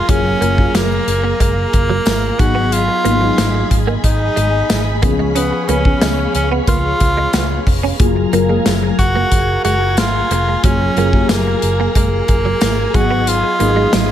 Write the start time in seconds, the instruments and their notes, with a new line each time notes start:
Already playing: tenor saxophone F4, string machine G#4 F5 G#5 A#5
0.09 fingered electric bass F#1, fm electric piano F#3 A#3 F4 G#4, clean electric guitar F#3, tenor saxophone C#4, kick, closed hi-hat
0.25 muted clean electric guitar stroke
0.41 fingered electric bass F#1, fm electric piano F#3 A#3 F4 A#4, clean electric guitar A#3, closed hi-hat
0.58 fm electric piano F#3 A#3 F4 G#4, kick
0.74 fingered electric bass F#1, clean electric guitar F#3, tenor saxophone A#3, snare, closed hi-hat, tambourine
0.91 muted clean electric guitar stroke
1.07 fingered electric bass F#1, closed hi-hat
1.24 clean electric guitar A#3
1.40 fingered electric bass F#1, clean electric guitar G#3, tenor saxophone A#3, kick, closed hi-hat
1.73 fingered electric bass F#1, muted clean electric guitar stroke, kick, closed hi-hat
1.90 clean electric guitar F#3
2.06 fingered electric bass G#1, clean electric guitar A#3, snare, closed hi-hat, tambourine
2.39 fingered electric bass G#1, fm electric piano F#3 B3 D#4 G#4, tenor saxophone F#4, string machine G#4 D#5 G#5 B5, muted clean electric guitar stroke, kick, closed hi-hat
2.55 clean electric guitar B3
2.72 tenor saxophone F4, closed hi-hat
2.88 muted clean electric guitar stroke
3.05 fingered electric bass G#1, fm electric piano F#3 B3 D#4 G#4, clean electric guitar A#3, closed hi-hat
3.21 fm electric piano F#3 B3 D#4 G#4, clean electric guitar G#3
3.38 fingered electric bass G#1, clean electric guitar F#3, snare, closed hi-hat, tambourine
3.55 muted clean electric guitar stroke
3.71 fingered electric bass G#1, kick, closed hi-hat
3.87 clean electric guitar A#3
4.04 fingered electric bass G#1, tenor saxophone D#4, kick, closed hi-hat
4.36 fingered electric bass G#1, clean electric guitar G#3, closed hi-hat
4.70 fingered electric bass G#1, muted clean electric guitar stroke, snare, closed hi-hat, tambourine
5.02 fingered electric bass C#2, fm electric piano E3 B3 C#4 G#4, clean electric guitar A#3, string machine C#5 F5, kick, closed hi-hat
5.09 fm electric piano F3
5.19 clean electric guitar G#3
5.35 tenor saxophone B3, clean electric guitar C#4, closed hi-hat
5.52 muted clean electric guitar stroke
5.68 fingered electric bass C#2, fm electric piano F3 B3 C#4 B4, clean electric guitar A#3, tenor saxophone C#4, closed hi-hat
5.85 fm electric piano F3 B3 C#4 G#4, kick
6.01 fingered electric bass C#2, clean electric guitar G#3, snare, closed hi-hat, tambourine
6.18 muted clean electric guitar stroke
6.35 fingered electric bass C#2, tenor saxophone C#4, closed hi-hat
6.52 clean electric guitar B3
6.67 fingered electric bass C#2, clean electric guitar A#3, tenor saxophone F4, kick, closed hi-hat
7.00 fingered electric bass C#2, muted clean electric guitar stroke, kick, closed hi-hat
7.17 clean electric guitar G#3
7.33 fingered electric bass C#2, clean electric guitar B3, snare, closed hi-hat, tambourine
7.67 fingered electric bass F1, muted clean electric guitar stroke, kick, open hi-hat
7.83 clean electric guitar C#4
7.99 fingered electric bass F#1, fm electric piano F#3 A#3 F4 G#4, string machine G#4 G#5 A#5, kick, closed hi-hat
8.16 muted clean electric guitar stroke
8.33 fingered electric bass F#1, fm electric piano F#3 A#3 F4 A#4, clean electric guitar A#3, closed hi-hat
8.49 fm electric piano F#3 A#3 G#4 F5, clean electric guitar G#3
8.66 fingered electric bass F#1, clean electric guitar F#3, snare, closed hi-hat, tambourine
8.83 muted clean electric guitar stroke
8.99 fingered electric bass F#1, tenor saxophone F#4, kick, closed hi-hat
9.16 clean electric guitar A#3
9.31 fingered electric bass F#1, kick, closed hi-hat
9.64 fingered electric bass F#1, clean electric guitar G#3, tenor saxophone F#4, closed hi-hat
9.97 fingered electric bass G#1, tenor saxophone F4, muted clean electric guitar stroke, snare, closed hi-hat, tambourine
10.31 fingered electric bass F1, clean electric guitar A#3, closed hi-hat
10.48 clean electric guitar G#3
10.63 fingered electric bass F#1, fm electric piano F#3 A#3 F4 G#4, clean electric guitar F#3, tenor saxophone C#4, kick, closed hi-hat
10.81 muted clean electric guitar stroke
10.96 fingered electric bass F#1, fm electric piano F#3 A#3 F4 G#4, clean electric guitar A#3, closed hi-hat
11.13 fm electric piano F#3 A#3 F4 G4, kick
11.21 fm electric piano G#4
11.29 fingered electric bass F#1, clean electric guitar F#3, tenor saxophone A#3, snare, closed hi-hat, tambourine
11.47 muted clean electric guitar stroke
11.62 fingered electric bass F#1, closed hi-hat
11.80 clean electric guitar A#3
11.95 fingered electric bass F#1, clean electric guitar G#3, tenor saxophone A#3, kick, closed hi-hat
12.28 fingered electric bass F#1, muted clean electric guitar stroke, kick, closed hi-hat
12.45 clean electric guitar F#3
12.61 fingered electric bass G#1, clean electric guitar A#3, snare, closed hi-hat, tambourine
12.94 fingered electric bass G#1, fm electric piano F#3 B3 D#4 G#4, tenor saxophone F#4, string machine D#5 B5, muted clean electric guitar stroke, kick, closed hi-hat
13.11 clean electric guitar B3
13.27 tenor saxophone F4, closed hi-hat
13.43 muted clean electric guitar stroke
13.60 fingered electric bass G#1, fm electric piano F#3 B3 D#4 G#4, clean electric guitar A#3, closed hi-hat
13.76 fm electric piano F#3 B3 D#4 G#4, clean electric guitar G#3
13.93 fingered electric bass G#1, clean electric guitar F#3, snare, closed hi-hat, tambourine